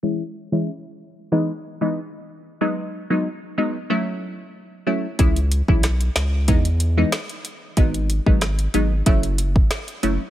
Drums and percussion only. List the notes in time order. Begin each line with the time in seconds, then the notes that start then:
5.19 kick, closed hi-hat
5.36 closed hi-hat
5.52 closed hi-hat
5.68 kick
5.83 cross-stick, snare, closed hi-hat
6.01 closed hi-hat
6.16 snare, closed hi-hat
6.48 kick, closed hi-hat
6.65 closed hi-hat
6.80 closed hi-hat
7.12 cross-stick, snare, closed hi-hat
7.29 closed hi-hat
7.45 closed hi-hat
7.77 kick, closed hi-hat
7.94 closed hi-hat
8.10 closed hi-hat
8.26 kick
8.41 cross-stick, snare, closed hi-hat
8.59 closed hi-hat
8.74 closed hi-hat
9.06 kick, closed hi-hat
9.23 closed hi-hat
9.38 closed hi-hat
9.56 kick
9.71 cross-stick, snare, closed hi-hat
9.88 closed hi-hat
10.03 closed hi-hat